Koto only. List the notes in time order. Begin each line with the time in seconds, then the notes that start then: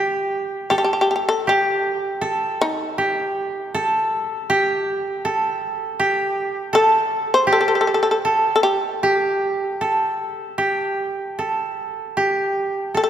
Already playing: G4
0.71 A4
1.47 G4
2.21 A4
2.98 G4
3.74 A4
4.50 G4
5.25 A4
6.00 G4
6.73 A4
7.47 G4
8.25 A4
9.03 G4
9.81 A4
10.58 G4
11.39 A4
12.17 G4
12.94 A4